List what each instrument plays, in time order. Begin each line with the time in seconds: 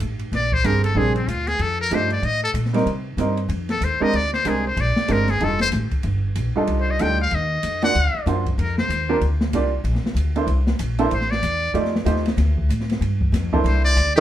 0.00 upright bass A1, hi-hat pedal, ride
0.19 ride
0.32 upright bass A#1, muted trumpet D5, snare, ride
0.52 muted trumpet C5, kick
0.64 upright bass G1, grand piano G3 A#3 C4 D4 G#4, muted trumpet A#4, hi-hat pedal, ride
0.84 muted trumpet A4, ride
0.95 upright bass A#1, grand piano G3 A#3 C4 D4 G#4, muted trumpet G#4
1.15 muted trumpet C4, ride
1.27 upright bass D2, muted trumpet F4, hi-hat pedal, ride
1.47 muted trumpet G#4, snare, ride
1.59 upright bass F2, muted trumpet A4, ride
1.81 muted trumpet A#4
1.91 upright bass G2, grand piano F3 A3 D4 D#4 G4, muted trumpet C5, hi-hat pedal, ride
2.10 muted trumpet D5, ride
2.22 upright bass A2, muted trumpet D#5, ride
2.44 muted trumpet A4
2.54 upright bass A#2, hi-hat pedal, ride
2.65 snare
2.73 grand piano G3 A#3 C4 D#4 A#4, snare, ride
2.86 upright bass C3, ride
3.17 upright bass G2, grand piano G3 A#3 C4 D#4 A#4, hi-hat pedal, ride
3.37 ride
3.49 upright bass F2, ride
3.69 muted trumpet A4, snare, ride
3.81 upright bass D#2, muted trumpet C5, hi-hat pedal, ride
4.00 grand piano G#3 C4 D4 G4 A#4, muted trumpet D#5, muted upright bass stroke
4.13 upright bass D2, muted trumpet D5, ride
4.33 muted trumpet C5, snare
4.45 upright bass C2, grand piano G#3 C4 D4 G4 A#4, muted trumpet G#4, hi-hat pedal, ride
4.67 muted trumpet C5
4.77 upright bass A#1, ride
4.81 muted trumpet D5
4.96 muted upright bass stroke, snare
5.08 upright bass G1, grand piano G#3 C4 D4 G4 A#4, muted trumpet A#4, hi-hat pedal, ride
5.28 muted trumpet G#4, snare, ride
5.40 upright bass F1, grand piano G3 D4 D#4 F4 A4, muted trumpet A4, ride
5.60 muted trumpet C5, snare
5.72 upright bass A1, hi-hat pedal, ride
5.91 muted upright bass stroke, kick, ride
6.03 upright bass G1, ride
6.35 upright bass A#1, hi-hat pedal, ride
6.56 grand piano G3 D4 D#4 F4 A4, muted upright bass stroke
6.67 upright bass C2, ride
6.81 muted trumpet C5
6.91 muted trumpet D#5
6.99 upright bass D2, grand piano G3 D4 D#4 F4 A4, muted trumpet G5, hi-hat pedal, ride
7.21 muted trumpet F5
7.31 upright bass D#2, muted trumpet D#5, ride
7.63 upright bass F2, hi-hat pedal, ride
7.82 grand piano A#3 D4 F4 F#4 D5, muted trumpet F#5, snare, ride
7.95 upright bass D2, ride
8.14 muted upright bass stroke
8.26 upright bass F#2, grand piano A#3 D4 F4 F#4 C5, hi-hat pedal, ride
8.46 kick, ride
8.58 upright bass F2, muted trumpet A#4, ride
8.78 muted trumpet C5, snare
8.89 upright bass D#2, hi-hat pedal, ride
9.09 grand piano A#3 D4 F4 G4 A#4
9.21 upright bass D2, ride
9.41 snare
9.53 upright bass C2, grand piano A#3 D4 F4 G4 D5, hi-hat pedal, ride
9.84 upright bass A#1, ride
9.95 snare
10.03 muted upright bass stroke, snare
10.15 upright bass D2, hi-hat pedal, ride
10.36 grand piano A#3 D4 E4 A4 C5, ride
10.47 upright bass C2, ride
10.67 snare
10.79 upright bass A#1, hi-hat pedal, ride
10.99 grand piano A#3 D4 E4 A4 C5, ride
11.11 upright bass A1, muted trumpet C5, ride
11.21 snare
11.31 muted trumpet D5, snare
11.43 upright bass E2, hi-hat pedal, ride
11.74 upright bass F2, grand piano A3 D#4 F4 G4 D5, ride
11.85 snare
11.96 snare
12.05 upright bass D#2, grand piano A3 D#4 F4 G4 C5, hi-hat pedal, ride
12.16 snare
12.26 snare, ride
12.37 upright bass D2, snare, ride
12.57 kick
12.69 upright bass A2, hi-hat pedal, ride
12.81 snare
12.90 snare, ride
13.01 upright bass G2, ride
13.21 kick
13.32 upright bass F2, snare, hi-hat pedal, ride
13.53 grand piano A#3 D4 E4 A4 C5, kick
13.64 upright bass C2, muted trumpet C5, ride
13.85 muted trumpet D5
13.96 upright bass D2, hi-hat pedal, ride
14.16 muted trumpet G4, ride